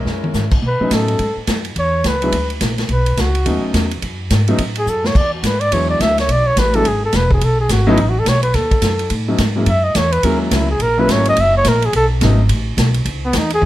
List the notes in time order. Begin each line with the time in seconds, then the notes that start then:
0.00 G#3 C#4 E4 A#4
0.05 F#2, snare
0.24 high tom
0.34 G#2, snare, hi-hat pedal
0.51 kick, crash
0.62 B2, kick
0.67 B4
0.80 F#3 A3 B3 C#4 D#4, muted upright bass stroke
0.91 A2 A4, kick, snare, hi-hat pedal, ride
1.08 ride
1.19 G#2, kick, ride
1.37 muted upright bass stroke
1.47 F#2, kick, snare, hi-hat pedal, ride
1.65 ride
1.76 E2 C#5, kick, ride
2.04 C#2 B4, kick, snare, hi-hat pedal, ride
2.22 F#3 G#3 B3 D4 E4, ride
2.32 D2, kick, ride
2.50 ride
2.60 A#1, kick, snare, hi-hat pedal, ride
2.78 snare, ride
2.89 B1 B4, kick, ride
3.06 ride
3.17 C#2 F#4, kick, snare, hi-hat pedal, ride
3.35 ride
3.45 D#2 F#3 A3 B3 C#4 D#4, kick, ride
3.74 E2, kick, snare, hi-hat pedal, ride
3.91 ride
4.02 F#2, kick, ride
4.30 G#2, kick, snare, hi-hat pedal, ride
4.48 F#3 A3 B3 C#4 D#4, ride
4.58 A2, kick, ride
4.75 G#4, ride
4.86 F#2 A4, hi-hat pedal
5.04 C#5, snare
5.15 E2 D5, kick, crash
5.34 F#4
5.43 G#2 B4, kick, snare, hi-hat pedal, ride
5.60 D5, ride
5.71 E2 F#3 G#3 B3 D4 E4 C#5, kick, ride
5.90 D5
6.00 D2 E5, kick, snare, hi-hat pedal, ride
6.18 C#5, snare, ride
6.28 B1 D5, kick, ride
6.47 C#5
6.56 A1 B4, kick, snare, hi-hat pedal, ride
6.74 F#3 G#3 B3 D4 E4 A4, ride
6.85 G#1 G#4, kick, ride
7.05 A4
7.12 E1 B4, kick, snare, hi-hat pedal, ride
7.31 G#4, kick
7.41 B1 A4, kick, ride
7.61 G#4
7.69 G#1 F#4, kick, snare, hi-hat pedal, ride
7.87 F#3 A3 B3 C#4 D#4 E4
7.97 A1 D#4, kick, ride
8.10 F#4
8.20 A4
8.25 B1 C#5, kick, snare, hi-hat pedal, ride
8.43 B4, ride
8.54 D#2 A4, kick, snare, ride
8.71 kick, ride
8.81 F#2, kick, snare, hi-hat pedal, ride
8.99 ride
9.10 A2, kick, ride
9.28 F#3 A3 B3 C#4 D#4
9.38 G#2, kick, snare, hi-hat pedal, ride
9.56 F#3 G#3 A#3 C#4 E4
9.66 F#2 E5, kick, ride
9.84 D#5
9.95 E2 C#5, kick, snare, hi-hat pedal, ride
10.12 B4, ride
10.23 D#2 F#3 G#3 A#3 C#4 E4 A#4, kick, ride
10.42 C#4
10.51 C#2 E4, kick, snare, hi-hat pedal, ride
10.71 G#4
10.79 A#1 A#4, kick, ride
10.97 F#3 G#3 A#3 C#4 E4 B4
11.08 G#1 C#5, kick, snare, hi-hat pedal, ride
11.25 D#5, ride
11.36 F#1, kick, ride
11.41 E5
11.57 C#5
11.64 A#1, kick, snare, hi-hat pedal, ride
11.69 A#4
11.82 G#4, ride
11.93 B1 A4, kick, ride
12.21 G#1 F#3 A3 B3 C#4 D#4, kick, snare, hi-hat pedal, ride
12.49 A1, kick, ride
12.77 B1, kick, snare, hi-hat pedal, ride
12.94 ride
13.05 C#2, kick, ride
13.26 B3
13.33 E2, kick, snare, hi-hat pedal, ride
13.38 D#4
13.50 G#4, ride
13.61 F#2, high tom